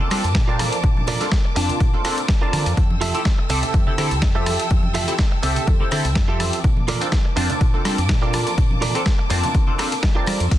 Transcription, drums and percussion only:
0.10 cross-stick, open hi-hat, tambourine
0.24 closed hi-hat, tambourine
0.35 kick, snare, closed hi-hat, tambourine
0.59 cross-stick, open hi-hat, tambourine, high conga
0.72 closed hi-hat, tambourine
0.84 kick, closed hi-hat, tambourine
0.97 high conga
1.07 open hi-hat, tambourine, low conga
1.20 snare, closed hi-hat, tambourine
1.32 kick, snare, closed hi-hat
1.56 open hi-hat, tambourine
1.69 closed hi-hat, tambourine, low conga
1.80 kick, closed hi-hat
1.94 low conga
2.04 cross-stick, open hi-hat, tambourine
2.18 closed hi-hat, tambourine
2.28 kick, snare, closed hi-hat
2.53 cross-stick, open hi-hat, tambourine, high conga
2.66 closed hi-hat, tambourine
2.77 kick, closed hi-hat
2.90 high conga
3.01 open hi-hat, tambourine, low conga
3.14 closed hi-hat, tambourine
3.25 kick, snare, closed hi-hat, tambourine
3.49 open hi-hat, tambourine
3.62 closed hi-hat, tambourine, low conga
3.73 kick, closed hi-hat, tambourine
3.87 low conga
3.98 cross-stick, open hi-hat, tambourine
4.11 closed hi-hat, tambourine
4.22 kick, snare, closed hi-hat
4.46 cross-stick, open hi-hat, tambourine, high conga
4.59 closed hi-hat, tambourine
4.70 kick, closed hi-hat, tambourine
4.83 high conga
4.94 open hi-hat, tambourine, low conga
5.07 closed hi-hat, tambourine
5.17 kick, snare, closed hi-hat, tambourine
5.42 open hi-hat, tambourine
5.56 closed hi-hat, tambourine, low conga
5.67 kick, closed hi-hat, tambourine
5.80 low conga
5.91 cross-stick, open hi-hat, tambourine
6.04 closed hi-hat, tambourine
6.15 kick, snare
6.40 cross-stick, open hi-hat, tambourine, high conga
6.53 closed hi-hat, tambourine
6.64 kick, closed hi-hat, tambourine
6.77 high conga
6.88 open hi-hat, tambourine, low conga
7.01 closed hi-hat, tambourine
7.12 kick, snare, closed hi-hat, tambourine
7.37 open hi-hat, tambourine
7.50 closed hi-hat, tambourine, low conga
7.61 kick, closed hi-hat, tambourine
7.74 low conga
7.85 cross-stick, open hi-hat, tambourine
7.98 closed hi-hat, tambourine
8.09 kick, snare, closed hi-hat, tambourine
8.33 cross-stick, open hi-hat, tambourine, high conga
8.47 closed hi-hat, tambourine
8.58 kick, closed hi-hat
8.71 high conga
8.82 open hi-hat, tambourine, low conga
8.95 closed hi-hat, tambourine
9.06 kick, snare, closed hi-hat
9.30 open hi-hat, tambourine
9.43 closed hi-hat, tambourine, high conga, low conga
9.54 kick, closed hi-hat, tambourine
9.67 low conga
9.79 cross-stick, open hi-hat, tambourine
9.92 closed hi-hat, tambourine
10.03 kick, snare, tambourine
10.26 cross-stick, open hi-hat, tambourine, high conga
10.40 closed hi-hat, tambourine
10.51 kick, closed hi-hat, crash, tambourine

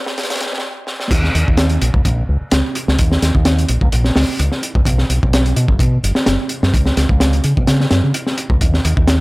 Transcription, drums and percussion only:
0.06 snare
0.18 snare, closed hi-hat
0.23 snare, closed hi-hat
0.30 snare, closed hi-hat
0.35 snare, closed hi-hat
0.40 snare, closed hi-hat
0.46 snare
0.53 snare
0.58 snare
0.87 snare
1.00 snare
1.11 kick, closed hi-hat, crash
1.24 snare
1.35 closed hi-hat
1.48 kick
1.57 snare, closed hi-hat
1.70 closed hi-hat
1.82 closed hi-hat
1.94 kick
2.05 kick, closed hi-hat
2.51 snare, closed hi-hat
2.75 closed hi-hat
2.88 snare
2.99 kick, closed hi-hat
3.12 snare
3.22 snare, closed hi-hat
3.35 kick
3.45 snare, closed hi-hat
3.59 closed hi-hat
3.69 closed hi-hat
3.81 kick
3.92 closed hi-hat
4.04 snare
4.16 snare, open hi-hat
4.39 closed hi-hat
4.52 snare
4.63 closed hi-hat
4.75 kick
4.85 kick, closed hi-hat
4.98 snare
5.10 closed hi-hat
5.23 kick
5.33 snare, closed hi-hat
5.46 closed hi-hat
5.56 closed hi-hat
5.68 kick
5.79 kick, closed hi-hat
6.04 closed hi-hat
6.15 snare
6.26 snare, closed hi-hat
6.49 closed hi-hat
6.63 snare
6.74 kick, closed hi-hat
6.86 snare
6.97 snare, closed hi-hat
7.09 kick
7.20 snare, closed hi-hat
7.33 closed hi-hat
7.44 closed hi-hat
7.57 kick
7.67 snare, closed hi-hat
7.80 snare
7.91 snare, closed hi-hat
8.14 closed hi-hat
8.27 snare
8.38 closed hi-hat
8.50 kick
8.61 kick, closed hi-hat
8.74 snare
8.85 closed hi-hat
8.97 kick
9.07 snare, closed hi-hat

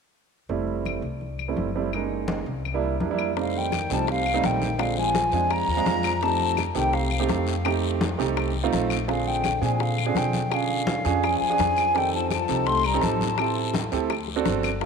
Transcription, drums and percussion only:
0.49 high conga
0.67 high conga
0.85 high conga, claves
1.03 high conga
1.21 high conga
1.38 high conga, claves
1.57 high conga
1.93 high conga, claves
2.10 high conga
2.28 high conga
2.47 high conga
2.65 high conga, claves
2.83 high conga
3.00 high conga
3.19 high conga, claves
3.36 high bongo, high conga, long guiro
3.54 high conga
3.72 high bongo, high conga, short guiro, claves
3.90 high conga, short guiro
4.07 high bongo, high conga, long guiro
4.26 high conga, claves
4.43 high bongo, low bongo, high conga, short guiro
4.62 high conga, short guiro
4.79 high bongo, high conga, long guiro, claves
4.97 high conga
5.15 high bongo, high conga, short guiro
5.32 high bongo, high conga, short guiro
5.50 high bongo, high conga, long guiro, claves
5.69 high bongo, high conga
5.86 high bongo, low bongo, high conga, short guiro
6.03 high bongo, high conga, short guiro, claves
6.21 high bongo, high conga, long guiro
6.40 high conga
6.57 high bongo, high conga, short guiro, claves
6.75 high conga, short guiro
6.93 high bongo, high conga, long guiro
7.11 high conga, claves
7.29 high bongo, low bongo, high conga, short guiro
7.47 short guiro
7.65 high bongo, high conga, long guiro, claves
7.84 high conga
8.01 high bongo, high conga, short guiro
8.19 high bongo, high conga, short guiro
8.37 high bongo, high conga, long guiro, claves
8.55 high bongo, high conga
8.73 high bongo, low bongo, high conga, short guiro
8.90 high bongo, high conga, short guiro, claves
9.08 high bongo, high conga, long guiro
9.27 high conga
9.44 high bongo, high conga, short guiro, claves
9.62 high conga, short guiro
9.80 high bongo, high conga, long guiro
9.98 high conga, claves
10.15 high bongo, low bongo, high conga, short guiro
10.33 high conga, short guiro
10.52 high bongo, high conga, long guiro, claves
10.69 high conga
10.87 high bongo, high conga, short guiro
11.05 high bongo, high conga, short guiro
11.23 high bongo, high conga, long guiro, claves
11.41 high bongo, high conga
11.58 high bongo, low bongo, high conga, short guiro
11.77 high bongo, high conga, short guiro, claves
11.95 high bongo, high conga, long guiro
12.13 high conga
12.30 high bongo, high conga, short guiro, claves
12.48 high conga, short guiro
12.67 high bongo, high conga, long guiro
12.84 high conga, claves
13.02 high bongo, low bongo, high conga, short guiro
13.21 high conga, short guiro
13.37 high bongo, high conga, long guiro, claves
13.56 high conga
13.73 high bongo, high conga, short guiro
13.92 high bongo, high conga, short guiro
14.10 high bongo, high conga, long guiro, claves
14.27 high bongo, high conga
14.46 high bongo, low bongo, high conga, short guiro
14.63 high bongo, high conga, short guiro, claves
14.81 high bongo, high conga, long guiro

